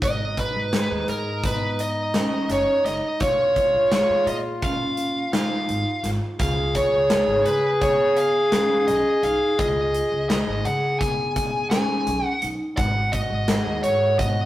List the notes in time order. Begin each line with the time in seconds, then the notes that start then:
0.02 G#1 D#4 F#4 D#5, kick, closed hi-hat
0.37 B4, kick, closed hi-hat
0.55 G#1
0.72 G#4, snare, closed hi-hat
0.90 D#2
1.08 G#2 A#4, closed hi-hat
1.43 B3 B4, kick, closed hi-hat
1.79 D#5, closed hi-hat
2.14 C#4, snare, closed hi-hat
2.49 F#1 C#5, snare, closed hi-hat
2.85 F#1 D#4 D#5, snare, closed hi-hat
3.20 A#1 F4 C#5, kick, closed hi-hat
3.56 kick, closed hi-hat
3.74 A#1
3.91 G#4 C#5, snare, closed hi-hat
4.09 F2
4.26 A#2 D#5, closed hi-hat
4.62 C#4 F5, kick, closed hi-hat
4.97 closed hi-hat
5.33 D#4 F5, snare, closed hi-hat
5.68 G#1, closed hi-hat
6.03 G#1 F4, snare, closed hi-hat
6.39 C#2 F4 G#4 F5, kick, closed hi-hat
6.75 C#5, kick, closed hi-hat
6.92 C#2
7.10 G#4, snare, closed hi-hat
7.27 G#1
7.45 C#3 B4, closed hi-hat
7.81 B3 C#5, kick, closed hi-hat
8.17 F5, closed hi-hat
8.52 C#4, snare, closed hi-hat
8.87 B1 D#5, closed hi-hat
9.23 B1 D#4 F5, closed hi-hat
9.58 C#2 F4 D#5, kick, closed hi-hat
9.94 closed hi-hat
10.12 C#2
10.29 G#4 D#5, snare, closed hi-hat
10.47 G#1
10.65 C#3 F#5, closed hi-hat
10.99 B3 G#5, kick, closed hi-hat
11.36 kick, closed hi-hat
11.70 C#4 G#5, snare, closed hi-hat
12.07 B1, closed hi-hat
12.26 F#5
12.42 B1 D#4, closed hi-hat
12.77 G#1 F#4 F#5, kick, closed hi-hat
13.12 D#5, kick, closed hi-hat
13.30 G#1
13.48 G#4, snare, closed hi-hat
13.66 D#2
13.83 G#2 C#5, closed hi-hat
14.19 B3 D#5, kick, closed hi-hat